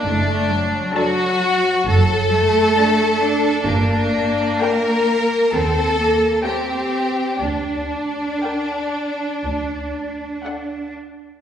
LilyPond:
<<
  \new Staff \with { instrumentName = "Violin section" } { \time 4/4 \key g \minor \tempo 4 = 64 r4 a''4 r4 a''4 | r4 g''4 r4 g''4 | r4 g''4 r4 fis''4 | }
  \new Staff \with { instrumentName = "Violin section" } { \time 4/4 \key g \minor d'4 fis'4 a'2 | d'4 bes'4 a'4 g'4 | d'2. r4 | }
  \new Staff \with { instrumentName = "Viola section" } { \time 4/4 \key g \minor r4 <d' a'>4 r4 <d' a'>4 | r4 <d' bes'>4 r4 <c' bes'>4 | r4 <d' bes'>4 r4 <d' a'>4 | }
  \new Staff \with { instrumentName = "Cello section" } { \time 4/4 \key g \minor a8 fis4. fis8 a8 a8 d'8 | bes2 c'8 bes8 c'4 | d'2.~ d'8 r8 | }
  \new Staff \with { instrumentName = "Double bass section" } { \clef bass \time 4/4 \key g \minor fis,,4 r4 fis,,4 r4 | g,,4 r4 ees,4 r4 | d,4 r4 d,4 r4 | }
>>